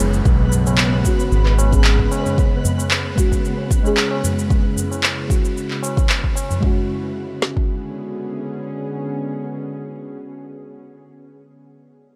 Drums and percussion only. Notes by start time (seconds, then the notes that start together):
0.13 shaker
0.25 kick, shaker
0.52 tabla ge, shaker
0.67 tabla na, shaker
0.78 clap, shaker
1.05 kick, shaker
1.19 tabla tin, shaker
1.32 shaker
1.46 clap
1.58 tabla na, shaker
1.73 kick, shaker
1.84 clap, shaker
1.99 kick
2.11 tabla na, shaker
2.25 tabla na, tabla ge, shaker
2.38 kick, shaker
2.65 tabla ge, shaker
2.78 tabla na, shaker
2.91 clap, shaker
3.18 kick, shaker
3.32 kick, tabla tin, shaker
3.45 shaker
3.58 tabla tin
3.71 kick, shaker
3.84 tabla na, shaker
3.97 clap, shaker
4.11 tabla na
4.24 tabla ge, shaker
4.39 shaker
4.50 kick, shaker
4.76 tabla ge, shaker
4.91 tabla na, shaker
5.03 clap, shaker
5.30 kick, shaker
5.44 tabla tin, shaker
5.57 shaker
5.71 clap
5.83 tabla na, shaker
5.96 kick, tabla na, shaker
6.09 clap, shaker
6.24 kick
6.35 tabla na, shaker
6.49 tabla na, tabla ge, shaker
6.63 kick
7.42 snare
7.57 kick